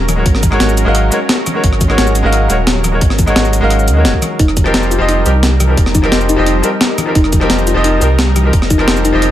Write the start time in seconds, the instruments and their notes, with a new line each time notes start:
Already playing: sub bass D#1, analog synth pad F#3 C#4 A#4
0.08 cross-stick, closed hi-hat, high conga, shaker
0.16 grand piano G#3 D#4 F#4 A#4 C#5
0.26 sub bass G#1, kick, closed hi-hat
0.35 cross-stick, snare
0.43 kick, closed hi-hat, high conga, shaker
0.50 grand piano G#3 D#4 F#4 A#4 C#5, cross-stick
0.60 sub bass G#1, snare, closed hi-hat
0.69 shaker
0.77 closed hi-hat, shaker
0.85 sub bass G#1, grand piano G#3 D#4 F#4 A#4 F5
0.95 cross-stick, closed hi-hat
1.10 grand piano G#3 D#4 F#4 A#4 C#5, closed hi-hat, shaker
1.29 snare, closed hi-hat
1.46 cross-stick, closed hi-hat, high conga, shaker
1.54 grand piano G#3 D#4 F#4 A#4 C#5
1.64 sub bass G#1, kick, closed hi-hat
1.73 cross-stick
1.81 kick, closed hi-hat, high conga, shaker
1.88 grand piano G#3 D#4 F#4 A#4 C#5, cross-stick
1.98 sub bass G#1, snare, closed hi-hat
2.07 shaker
2.15 closed hi-hat, shaker
2.23 sub bass G#1, grand piano G#3 D#4 F#4 A#4 F5
2.33 cross-stick, closed hi-hat
2.48 sub bass D#1, grand piano G#3 D#4 F#4 A#4 C#5, closed hi-hat, shaker
2.67 snare, closed hi-hat
2.83 cross-stick, closed hi-hat, high conga, shaker
2.92 grand piano G#3 D#4 F#4 A#4 C#5
3.01 sub bass G#1, kick, closed hi-hat
3.10 cross-stick, snare
3.19 kick, closed hi-hat, high conga, shaker
3.26 grand piano G#3 D#4 F#4 A#4 C#5, cross-stick, shaker
3.36 sub bass G#1, snare, closed hi-hat
3.45 shaker
3.53 closed hi-hat, shaker
3.61 sub bass G#1, grand piano G#3 D#4 F#4 A#4 F5
3.70 cross-stick, closed hi-hat
3.79 shaker
3.88 sub bass D#2, closed hi-hat, shaker
3.94 grand piano G#3 D#4 F#4
3.98 grand piano A#4 C#5
4.05 sub bass D#1, snare, closed hi-hat
4.14 kick
4.22 cross-stick, closed hi-hat, high conga, shaker
4.39 sub bass F1, analog synth pad G3 D#4 A#4, synth arpeggio sound D#4, kick, closed hi-hat
4.48 cross-stick
4.57 kick, closed hi-hat, high conga, shaker
4.64 grand piano F3 C4 D#4 G4 A#4, cross-stick
4.74 sub bass F1, snare, closed hi-hat
4.83 shaker
4.91 synth arpeggio sound F4, closed hi-hat, shaker
4.98 sub bass F1, grand piano F3 C4 D#4 G4 D#5
5.09 synth arpeggio sound D#4, cross-stick, closed hi-hat
5.24 sub bass C2, grand piano F3 C4 D#4 G4 A#4, closed hi-hat, shaker
5.43 snare, closed hi-hat
5.60 synth arpeggio sound G4, cross-stick, closed hi-hat, high conga, shaker
5.67 grand piano F3 C4 D#4 G4 A#4
5.77 sub bass F1, kick, closed hi-hat
5.86 cross-stick, snare
5.95 synth arpeggio sound D#4, kick, closed hi-hat, high conga, shaker
6.02 grand piano F3 C4 D#4 G4 A#4, cross-stick
6.12 sub bass F1, snare, closed hi-hat
6.21 shaker
6.29 synth arpeggio sound D#4, closed hi-hat, shaker
6.36 sub bass F1, grand piano F3 C4 D#4 G4 D#5
6.46 synth arpeggio sound D#4, cross-stick, closed hi-hat
6.62 grand piano F3 C4 D#4 G4 A#4, synth arpeggio sound A#4, closed hi-hat, shaker
6.81 snare, closed hi-hat
6.98 cross-stick, closed hi-hat, high conga, shaker
7.06 grand piano F3 C4 D#4 G4 A#4
7.15 sub bass F1, synth arpeggio sound D#4, kick, closed hi-hat
7.24 cross-stick
7.33 kick, closed hi-hat, high conga, shaker
7.40 grand piano F3 C4 D#4 G4 A#4, cross-stick
7.50 sub bass F1, snare, closed hi-hat
7.59 shaker
7.67 synth arpeggio sound F4, closed hi-hat, shaker
7.74 sub bass F1, grand piano F3 C4 D#4 G4 D#5
7.84 synth arpeggio sound D#4, cross-stick, closed hi-hat
8.00 sub bass C2, grand piano F3 C4 D#4 G4 A#4, closed hi-hat, shaker
8.19 snare, closed hi-hat
8.36 synth arpeggio sound G4, cross-stick, closed hi-hat, high conga, shaker
8.43 grand piano F3 C4 D#4 G4 A#4
8.53 sub bass F1, kick, closed hi-hat
8.62 cross-stick, snare
8.70 synth arpeggio sound D#4, kick, closed hi-hat, high conga, shaker
8.78 grand piano F3 C4 D#4 G4 A#4, cross-stick
8.88 sub bass F1, snare, closed hi-hat
8.97 shaker
9.05 synth arpeggio sound D#4, closed hi-hat, shaker
9.12 sub bass F1, grand piano F3 C4 D#4 G4 D#5
9.22 synth arpeggio sound D#4, cross-stick, closed hi-hat